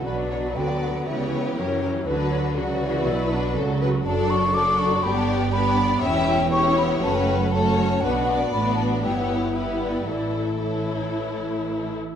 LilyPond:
<<
  \new Staff \with { instrumentName = "Flute" } { \time 4/4 \key b \minor \tempo 4 = 119 d''4 g''8 fis''8 e''16 d''8 cis''16 cis''4 | b'8 cis''8 d''2~ d''8 r8 | a''8 cis'''8 d'''8 cis'''8 b''16 a''8 g''16 b''4 | g''4 cis'''8 b''8 a''16 g''8 fis''16 a''4 |
fis''4 b''8 a''8 g''16 fis''8. e''8 d''8 | d''8. r16 cis''2~ cis''8 r8 | }
  \new Staff \with { instrumentName = "Violin section" } { \time 4/4 \key b \minor b'8 cis''8 d''4 cis''4 ais'8 ais'8 | b'4 fis'4 b'4 a'8 b'8 | a'2 g'4 b'8 d''8 | e''4 cis''4 b'4 a'8 cis''8 |
b'8 d''4. cis''4 b'4 | a'2.~ a'8 r8 | }
  \new Staff \with { instrumentName = "Violin section" } { \time 4/4 \key b \minor << { b'2 b'4 ais'8 ais'8 | b'4 b'2 a'4 | d''4 d''4 d''4 d''4 | cis''4 cis''4 cis''4 cis''4 |
b'4 b'4 b'4 b'4 | a'4 a'2~ a'8 r8 | } \\ { fis'2 g'2 | fis'4 fis'2 a'4 | a'4 a'4 g'4 g'4 | g'4 g'4 fis'4 fis'4 |
fis'4 fis'4 g'4 g'4 | e'4 e'2~ e'8 r8 | } >> }
  \new Staff \with { instrumentName = "Viola section" } { \time 4/4 \key b \minor << { d'4 b2 cis'4 | d'4 fis'4 e'8 d'8 fis'4 | d'4 d'4 d'4 d'4 | e'4 e'4 cis'4 cis'4 |
d'4 d'4 e'4 e'4 | e'4 e'2~ e'8 r8 | } \\ { fis8 fis4. e2 | fis4 fis8 e8 fis4 fis4 | fis4 fis4 b4 b4 | cis'4 cis'8 b8 a4 a4 |
b4 b4 b4 b4 | e4 e2~ e8 r8 | } >> }
  \new Staff \with { instrumentName = "Cello section" } { \clef bass \time 4/4 \key b \minor b,4 d4 cis4 fis4 | d4 cis4 b,4 cis4 | fis,2 g,2 | e,2 fis,2 |
b,4 a,4 g,2 | a,2.~ a,8 r8 | }
  \new Staff \with { instrumentName = "Double bass section" } { \clef bass \time 4/4 \key b \minor b,,4 d,4 cis,4 fis,4 | d,4 cis,4 b,,4 cis,4 | fis,,2 g,,2 | e,,2 fis,,2 |
b,,4 a,,4 g,,2 | a,,2.~ a,,8 r8 | }
>>